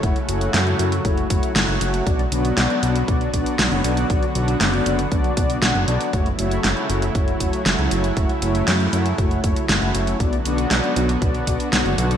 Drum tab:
HH |xxxxxxxxxxxxxxxx|xxxxxxxxxxxxxxxx|xxxxxxxxxxxxxxxx|xxxxxxxxxxxxxxxx|
SD |----o-------o---|----o-------o---|----o-------o---|----o-------o---|
BD |o-------o-o-----|o-------o-o-----|o-------o-o-----|o-------o-o-----|

HH |xxxxxxxxxxxxxxxx|xxxxxxxxxxxxxxxx|
SD |----o-------o---|----o-------o---|
BD |o-------o-o-----|o-------o-o-----|